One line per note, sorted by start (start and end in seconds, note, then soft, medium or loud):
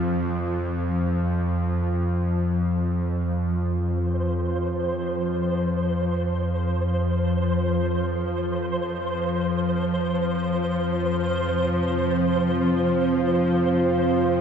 0.00 3.69 F2 medium
0.00 3.68 F3 medium
0.00 3.71 C4 medium
0.00 3.69 F4 medium
0.00 3.70 C5 medium
0.00 3.72 F5 medium
3.70 14.41 F2 medium
3.70 14.41 F3 medium
3.70 14.41 C5 medium
11.08 14.41 C4 medium
11.66 14.41 F5 medium
11.84 14.41 C5 medium
12.12 14.41 F4 medium